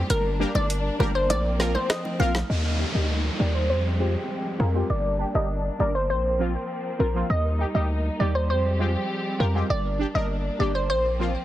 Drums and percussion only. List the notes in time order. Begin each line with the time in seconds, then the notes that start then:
0.10 closed hi-hat, high bongo
0.55 high bongo
0.70 closed hi-hat
1.00 low bongo
1.30 closed hi-hat, high bongo
1.60 snare
1.75 high bongo
1.90 cross-stick, snare, closed hi-hat
2.05 high bongo
2.20 low bongo
2.35 snare, high bongo